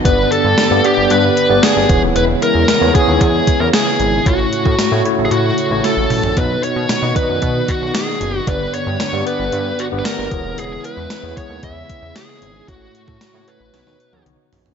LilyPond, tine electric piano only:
<<
  \new Staff \with { instrumentName = "Tine electric piano" } { \time 4/4 \key e \lydian \tempo 4 = 114 <b d' g' d''>8. r8 <b d' g' d''>16 <b d' g' d''>8. r8 <b d' g' d''>8. <b e' gis' cis''>8~ | <b e' gis' cis''>4 r16 <b e' gis' cis''>16 <b e' gis' b' cis''>4~ <b e' gis' b' cis''>16 r4 r16 | <a e' fis' cis''>8. r8 <a e' fis' cis''>16 <a e' fis' cis''>8. r8 <a e' fis' cis''>8. r8 | <b dis' fis' dis''>8. r8 <b dis' fis' dis''>16 <b dis' fis' d'' dis''>4~ <b dis' fis' d'' dis''>16 r4 r16 |
<b d' g' d''>8. r8 <b d' g' d''>16 <b d' g' d''>8. r8 <b d' g' b'>8. <b e' gis' cis''>8~ | <b e' gis' cis''>4 r16 <b e' gis' cis''>16 <b e' gis' cis''>4~ <b e' gis' cis''>16 r4 r16 | <a e' fis' cis''>8. r8 <a e' fis' cis''>16 <a e' fis' cis''>8 <b dis' fis' cis''>8 r16 <b dis' fis' cis''>8. r8 | }
  \new Staff \with { instrumentName = "Tine electric piano" } { \clef bass \time 4/4 \key e \lydian g,4. r2 e8~ | e4 r2. | a,4. r2 r8 | b,4. r2 r8 |
g,4. r2 e8~ | e4 r2. | a,4. r8 b,4. r8 | }
>>